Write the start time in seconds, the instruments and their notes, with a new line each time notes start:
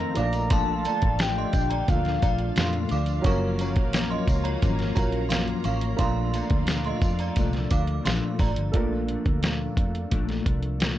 Already playing: clean electric guitar F2 D#3 A3 C4, upright piano A3 D#4 F4, string machine D#4 C5 F5, soft synth lead A#5
0.00 closed hi-hat
0.15 fingered electric bass A#1, clean electric guitar A3 D4, upright piano A#3 D4 F4, string machine D4 D5, synth bell F5 D6, closed hi-hat, tambourine
0.19 clean electric guitar F3, upright piano D5
0.33 closed hi-hat, tambourine
0.50 clean electric guitar A#2 F3 A3 D4, synth bell F5 C6, soft synth lead A5, kick, closed hi-hat, tambourine
0.85 clean electric guitar A3 D4, synth bell D5 A#5, closed hi-hat, tambourine
0.89 clean electric guitar F3
1.02 fingered electric bass A1, kick, closed hi-hat
1.19 clean electric guitar F3 A3 D4, soft synth lead G5, snare, closed hi-hat, tambourine
1.38 synth bell D#5 C6
1.53 fingered electric bass A#1, clean electric guitar F3 A3 D4, kick, closed hi-hat, tambourine
1.70 synth bell D5 A#5, closed hi-hat
1.88 fingered electric bass D2, clean electric guitar A#2 F3 A3 D4, soft synth lead F5, kick, closed hi-hat, tambourine
2.05 snare, closed hi-hat
2.21 fingered electric bass A#1, clean electric guitar F3 A3 D4, synth bell D5 A#5, kick, closed hi-hat, tambourine
2.38 closed hi-hat
2.55 fingered electric bass F2, clean electric guitar A#2 F3 A3 D4, synth bell F5 C6, snare, closed hi-hat, tambourine
2.73 closed hi-hat
2.89 fingered electric bass D2, clean electric guitar A3 D4, synth bell F5 D6, closed hi-hat, tambourine
2.93 clean electric guitar F3
3.06 closed hi-hat, tambourine
3.22 fingered electric bass F#1, clean electric guitar F#2 F3 A#3 C#4, upright piano F#3 C#4 F4, string machine F4 C#5 A#5, kick, closed hi-hat
3.26 upright piano A#4, synth bell F5 C#6, tambourine
3.57 clean electric guitar A#3 C#4, synth bell A#5, closed hi-hat, tambourine
3.61 clean electric guitar F3, synth bell C#5
3.76 fingered electric bass A#1, kick, closed hi-hat
3.93 clean electric guitar F#2 F3 A#3 C#4, snare, closed hi-hat, tambourine
4.10 synth bell D#5 C6
4.26 fingered electric bass C#2, clean electric guitar F3 A#3 C#4, kick, closed hi-hat, tambourine
4.44 synth bell C#5 A#5, closed hi-hat
4.61 fingered electric bass G#1, clean electric guitar F#2 F3 A#3 C#4, kick, closed hi-hat, tambourine
4.79 snare, closed hi-hat
4.95 fingered electric bass A#1, clean electric guitar F3 A#3 C#4, upright piano F#3 C#4 F4 A#4, synth bell C#5 A#5, kick, closed hi-hat, tambourine
5.12 closed hi-hat
5.29 clean electric guitar F#2 F3 A#3 C#4, synth bell F5 C6, snare, closed hi-hat, tambourine
5.48 closed hi-hat
5.64 fingered electric bass A1, clean electric guitar A#3 C#4, synth bell F5 C#6, closed hi-hat, tambourine
5.68 clean electric guitar F3
5.81 closed hi-hat
5.97 fingered electric bass A#1, clean electric guitar A#2 F3, upright piano A#3 D4 F4, string machine F4 D5 F5, synth bell F5 C6, kick, closed hi-hat, tambourine
6.01 clean electric guitar A3 D4, upright piano A#5
6.32 clean electric guitar F3 A3 D4, synth bell A#5, closed hi-hat, tambourine
6.36 synth bell D5
6.50 fingered electric bass D2, kick, closed hi-hat
6.66 clean electric guitar A#2 F3 A3 D4, snare, closed hi-hat, tambourine
6.84 synth bell D#5 C6, closed hi-hat
7.02 fingered electric bass F2, clean electric guitar F3 A3 D4, kick, closed hi-hat, tambourine
7.19 synth bell D5 A#5, closed hi-hat, tambourine
7.36 fingered electric bass C2, clean electric guitar A#2 F3 A3 D4, kick, closed hi-hat, tambourine
7.53 snare, closed hi-hat
7.70 fingered electric bass D2, clean electric guitar F3 A3 D4, synth bell F5 D6, kick, closed hi-hat, tambourine
7.87 closed hi-hat
8.03 fingered electric bass A#1, clean electric guitar A#2 F3 A3 D4, synth bell F5 C6, closed hi-hat, tambourine
8.07 snare
8.38 fingered electric bass A1, clean electric guitar F3 A3 D4, synth bell D5 A#5, kick, open hi-hat, tambourine
8.56 fingered electric bass G1, closed hi-hat
8.71 fingered electric bass A#1, clean electric guitar A#2 F3 A3 D4, upright piano D4 F4 A4, kick, closed hi-hat
8.76 upright piano A#3
9.07 clean electric guitar F3 A3 D4, closed hi-hat
9.26 fingered electric bass D2, kick, closed hi-hat
9.41 clean electric guitar A#2 F3 A3 D4, snare, closed hi-hat
9.75 fingered electric bass F2, clean electric guitar F3 A3 D4, kick, closed hi-hat
9.95 closed hi-hat
10.10 fingered electric bass A#1, clean electric guitar A#2 F3 A3 D4, kick, closed hi-hat
10.29 snare, closed hi-hat
10.44 fingered electric bass C2, clean electric guitar F3 A3 D4, kick, closed hi-hat
10.63 closed hi-hat
10.79 clean electric guitar A#2 F3 A3 D4, snare, closed hi-hat